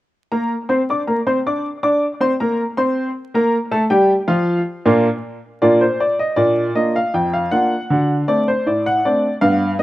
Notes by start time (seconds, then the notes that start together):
0.32 A#3 A#4 A#5
0.69 C4 C5 C6
0.90 D4 D5 D6
1.07 A#3 A#4 A#5
1.27 C4 C5 C6
1.46 D4 D5 D6
1.83 D4 D5 D6
2.20 C4 C5 C6
2.40 A#3 A#4 A#5
2.77 C4 C5 C6
3.34 A#3 A#4 A#5
3.71 A3 A4 A5
3.90 G3 G4 G5
4.28 F3 F4 F5
4.85 A#2 A#3 D4 F4
5.62 A#2 A#3 D4 F4 D5
5.81 C5
6.00 D5
6.19 D#5
6.36 A#2 D4 D5
6.75 A#3 D4 F4 D#5
6.96 F5
7.14 F2 G5
7.33 F5
7.51 A#3 D4 F4 F#5
7.90 D3 F#4
8.28 A3 C4 D4 D5
8.48 C5
8.66 A2 D5
8.86 F#5
9.05 A3 C4 D4 D5
9.41 G2 B3 F5
9.79 G3 B3 D#5